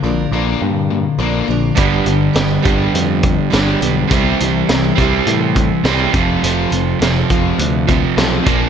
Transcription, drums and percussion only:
0, 0, Header, 1, 2, 480
1, 0, Start_track
1, 0, Tempo, 581395
1, 1467, Time_signature, 4, 2, 24, 8
1, 7176, End_track
2, 0, Start_track
2, 0, Title_t, "Drums"
2, 1459, Note_on_c, 9, 42, 84
2, 1467, Note_on_c, 9, 36, 98
2, 1542, Note_off_c, 9, 42, 0
2, 1549, Note_off_c, 9, 36, 0
2, 1700, Note_on_c, 9, 42, 58
2, 1782, Note_off_c, 9, 42, 0
2, 1943, Note_on_c, 9, 42, 71
2, 1947, Note_on_c, 9, 38, 107
2, 2026, Note_off_c, 9, 42, 0
2, 2029, Note_off_c, 9, 38, 0
2, 2192, Note_on_c, 9, 36, 81
2, 2195, Note_on_c, 9, 42, 56
2, 2274, Note_off_c, 9, 36, 0
2, 2278, Note_off_c, 9, 42, 0
2, 2434, Note_on_c, 9, 42, 81
2, 2516, Note_off_c, 9, 42, 0
2, 2665, Note_on_c, 9, 42, 55
2, 2671, Note_on_c, 9, 36, 82
2, 2748, Note_off_c, 9, 42, 0
2, 2753, Note_off_c, 9, 36, 0
2, 2916, Note_on_c, 9, 42, 83
2, 2919, Note_on_c, 9, 38, 95
2, 2998, Note_off_c, 9, 42, 0
2, 3001, Note_off_c, 9, 38, 0
2, 3154, Note_on_c, 9, 42, 58
2, 3237, Note_off_c, 9, 42, 0
2, 3391, Note_on_c, 9, 42, 89
2, 3393, Note_on_c, 9, 36, 104
2, 3473, Note_off_c, 9, 42, 0
2, 3476, Note_off_c, 9, 36, 0
2, 3635, Note_on_c, 9, 42, 67
2, 3718, Note_off_c, 9, 42, 0
2, 3872, Note_on_c, 9, 42, 85
2, 3875, Note_on_c, 9, 38, 104
2, 3954, Note_off_c, 9, 42, 0
2, 3958, Note_off_c, 9, 38, 0
2, 4113, Note_on_c, 9, 36, 71
2, 4116, Note_on_c, 9, 42, 56
2, 4195, Note_off_c, 9, 36, 0
2, 4199, Note_off_c, 9, 42, 0
2, 4348, Note_on_c, 9, 42, 75
2, 4430, Note_off_c, 9, 42, 0
2, 4590, Note_on_c, 9, 42, 57
2, 4591, Note_on_c, 9, 36, 77
2, 4672, Note_off_c, 9, 42, 0
2, 4673, Note_off_c, 9, 36, 0
2, 4827, Note_on_c, 9, 42, 72
2, 4831, Note_on_c, 9, 38, 99
2, 4910, Note_off_c, 9, 42, 0
2, 4913, Note_off_c, 9, 38, 0
2, 5065, Note_on_c, 9, 42, 58
2, 5069, Note_on_c, 9, 36, 103
2, 5148, Note_off_c, 9, 42, 0
2, 5151, Note_off_c, 9, 36, 0
2, 5314, Note_on_c, 9, 42, 84
2, 5397, Note_off_c, 9, 42, 0
2, 5547, Note_on_c, 9, 42, 62
2, 5629, Note_off_c, 9, 42, 0
2, 5792, Note_on_c, 9, 42, 79
2, 5795, Note_on_c, 9, 38, 98
2, 5875, Note_off_c, 9, 42, 0
2, 5878, Note_off_c, 9, 38, 0
2, 6029, Note_on_c, 9, 36, 80
2, 6029, Note_on_c, 9, 42, 52
2, 6111, Note_off_c, 9, 36, 0
2, 6112, Note_off_c, 9, 42, 0
2, 6268, Note_on_c, 9, 42, 72
2, 6351, Note_off_c, 9, 42, 0
2, 6510, Note_on_c, 9, 36, 75
2, 6511, Note_on_c, 9, 42, 54
2, 6593, Note_off_c, 9, 36, 0
2, 6594, Note_off_c, 9, 42, 0
2, 6750, Note_on_c, 9, 42, 75
2, 6753, Note_on_c, 9, 38, 98
2, 6833, Note_off_c, 9, 42, 0
2, 6836, Note_off_c, 9, 38, 0
2, 6988, Note_on_c, 9, 42, 62
2, 6990, Note_on_c, 9, 36, 94
2, 7070, Note_off_c, 9, 42, 0
2, 7072, Note_off_c, 9, 36, 0
2, 7176, End_track
0, 0, End_of_file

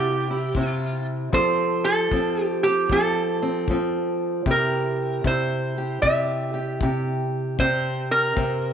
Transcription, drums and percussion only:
0, 0, Header, 1, 2, 480
1, 0, Start_track
1, 0, Tempo, 780234
1, 824, Time_signature, 4, 2, 24, 8
1, 5371, End_track
2, 0, Start_track
2, 0, Title_t, "Drums"
2, 337, Note_on_c, 9, 36, 61
2, 399, Note_off_c, 9, 36, 0
2, 818, Note_on_c, 9, 36, 65
2, 880, Note_off_c, 9, 36, 0
2, 1300, Note_on_c, 9, 36, 64
2, 1362, Note_off_c, 9, 36, 0
2, 1781, Note_on_c, 9, 36, 61
2, 1842, Note_off_c, 9, 36, 0
2, 2262, Note_on_c, 9, 36, 66
2, 2324, Note_off_c, 9, 36, 0
2, 2744, Note_on_c, 9, 36, 69
2, 2805, Note_off_c, 9, 36, 0
2, 3226, Note_on_c, 9, 36, 67
2, 3287, Note_off_c, 9, 36, 0
2, 3708, Note_on_c, 9, 36, 61
2, 3769, Note_off_c, 9, 36, 0
2, 4187, Note_on_c, 9, 36, 64
2, 4249, Note_off_c, 9, 36, 0
2, 4668, Note_on_c, 9, 36, 72
2, 4730, Note_off_c, 9, 36, 0
2, 5148, Note_on_c, 9, 36, 69
2, 5209, Note_off_c, 9, 36, 0
2, 5371, End_track
0, 0, End_of_file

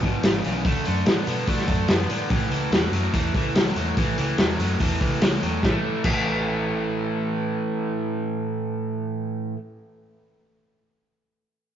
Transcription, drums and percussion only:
0, 0, Header, 1, 2, 480
1, 0, Start_track
1, 0, Key_signature, 3, "major"
1, 0, Tempo, 414938
1, 755, Time_signature, 4, 2, 24, 8
1, 13592, End_track
2, 0, Start_track
2, 0, Title_t, "Drums"
2, 32, Note_on_c, 9, 46, 45
2, 34, Note_on_c, 9, 36, 74
2, 148, Note_off_c, 9, 46, 0
2, 150, Note_off_c, 9, 36, 0
2, 270, Note_on_c, 9, 46, 75
2, 275, Note_on_c, 9, 38, 112
2, 385, Note_off_c, 9, 46, 0
2, 391, Note_off_c, 9, 38, 0
2, 513, Note_on_c, 9, 46, 51
2, 629, Note_off_c, 9, 46, 0
2, 749, Note_on_c, 9, 46, 78
2, 751, Note_on_c, 9, 36, 115
2, 865, Note_off_c, 9, 46, 0
2, 867, Note_off_c, 9, 36, 0
2, 986, Note_on_c, 9, 46, 48
2, 1102, Note_off_c, 9, 46, 0
2, 1229, Note_on_c, 9, 46, 71
2, 1235, Note_on_c, 9, 38, 117
2, 1345, Note_off_c, 9, 46, 0
2, 1351, Note_off_c, 9, 38, 0
2, 1468, Note_on_c, 9, 46, 52
2, 1584, Note_off_c, 9, 46, 0
2, 1705, Note_on_c, 9, 46, 82
2, 1708, Note_on_c, 9, 36, 88
2, 1820, Note_off_c, 9, 46, 0
2, 1823, Note_off_c, 9, 36, 0
2, 1826, Note_on_c, 9, 38, 31
2, 1940, Note_on_c, 9, 46, 57
2, 1941, Note_off_c, 9, 38, 0
2, 1945, Note_on_c, 9, 36, 91
2, 2056, Note_off_c, 9, 46, 0
2, 2061, Note_off_c, 9, 36, 0
2, 2177, Note_on_c, 9, 46, 78
2, 2183, Note_on_c, 9, 38, 109
2, 2293, Note_off_c, 9, 46, 0
2, 2299, Note_off_c, 9, 38, 0
2, 2424, Note_on_c, 9, 46, 56
2, 2540, Note_off_c, 9, 46, 0
2, 2662, Note_on_c, 9, 46, 83
2, 2665, Note_on_c, 9, 36, 110
2, 2778, Note_off_c, 9, 46, 0
2, 2781, Note_off_c, 9, 36, 0
2, 2909, Note_on_c, 9, 46, 50
2, 3025, Note_off_c, 9, 46, 0
2, 3151, Note_on_c, 9, 46, 75
2, 3157, Note_on_c, 9, 38, 117
2, 3266, Note_off_c, 9, 46, 0
2, 3272, Note_off_c, 9, 38, 0
2, 3388, Note_on_c, 9, 46, 54
2, 3504, Note_off_c, 9, 46, 0
2, 3628, Note_on_c, 9, 46, 79
2, 3629, Note_on_c, 9, 36, 91
2, 3744, Note_off_c, 9, 36, 0
2, 3744, Note_off_c, 9, 46, 0
2, 3867, Note_on_c, 9, 46, 50
2, 3870, Note_on_c, 9, 36, 79
2, 3983, Note_off_c, 9, 46, 0
2, 3986, Note_off_c, 9, 36, 0
2, 4112, Note_on_c, 9, 46, 75
2, 4118, Note_on_c, 9, 38, 114
2, 4228, Note_off_c, 9, 46, 0
2, 4234, Note_off_c, 9, 38, 0
2, 4352, Note_on_c, 9, 46, 50
2, 4468, Note_off_c, 9, 46, 0
2, 4592, Note_on_c, 9, 46, 83
2, 4594, Note_on_c, 9, 36, 105
2, 4708, Note_off_c, 9, 46, 0
2, 4710, Note_off_c, 9, 36, 0
2, 4832, Note_on_c, 9, 46, 51
2, 4948, Note_off_c, 9, 46, 0
2, 5068, Note_on_c, 9, 46, 79
2, 5073, Note_on_c, 9, 38, 96
2, 5183, Note_off_c, 9, 46, 0
2, 5189, Note_off_c, 9, 38, 0
2, 5318, Note_on_c, 9, 46, 56
2, 5434, Note_off_c, 9, 46, 0
2, 5556, Note_on_c, 9, 36, 98
2, 5556, Note_on_c, 9, 46, 83
2, 5671, Note_off_c, 9, 36, 0
2, 5672, Note_off_c, 9, 46, 0
2, 5795, Note_on_c, 9, 46, 57
2, 5796, Note_on_c, 9, 36, 86
2, 5911, Note_off_c, 9, 46, 0
2, 5912, Note_off_c, 9, 36, 0
2, 6034, Note_on_c, 9, 46, 90
2, 6040, Note_on_c, 9, 38, 117
2, 6149, Note_off_c, 9, 46, 0
2, 6155, Note_off_c, 9, 38, 0
2, 6281, Note_on_c, 9, 46, 54
2, 6396, Note_off_c, 9, 46, 0
2, 6514, Note_on_c, 9, 36, 106
2, 6519, Note_on_c, 9, 38, 90
2, 6630, Note_off_c, 9, 36, 0
2, 6634, Note_off_c, 9, 38, 0
2, 6988, Note_on_c, 9, 49, 93
2, 6992, Note_on_c, 9, 36, 104
2, 7104, Note_off_c, 9, 49, 0
2, 7108, Note_off_c, 9, 36, 0
2, 13592, End_track
0, 0, End_of_file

